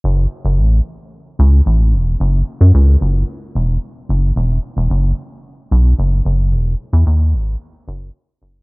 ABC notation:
X:1
M:4/4
L:1/16
Q:1/4=111
K:F#dor
V:1 name="Analog synth bass" clef=bass
F,,,2 z F,,, A,,,2 z4 C,,2 A,,,2 E,,,2 | F,,,2 z F,, C,,2 F,,,2 z2 E,,,2 z2 F,,,2 | E,,,2 z E,,, F,,,2 z4 B,,,2 F,,,2 F,,,2 | E,,,2 z E,, D,,2 G,,,2 z2 F,,,2 z2 F,,,2 |]